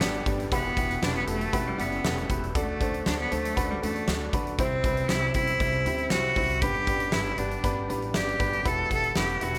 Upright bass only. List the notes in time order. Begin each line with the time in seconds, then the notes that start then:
0.01 G1
0.26 G1
0.52 E1
0.77 E1
1.02 E1
1.27 E1
1.53 E1
1.78 F#1
2.04 E1
2.30 E1
2.55 D2
2.81 D2
3.07 D2
3.32 D2
3.57 D2
3.83 E2
4.08 D2
4.33 D2
4.58 C2
4.84 C2
5.09 C2
5.35 C2
5.60 C2
5.86 D2
6.11 C2
6.36 C2
6.62 G1
6.87 G1
7.12 G1
7.38 G1
7.64 G1
7.90 A1
8.15 G1
8.40 G1
8.66 E1
8.91 E1
9.17 E1
9.42 E1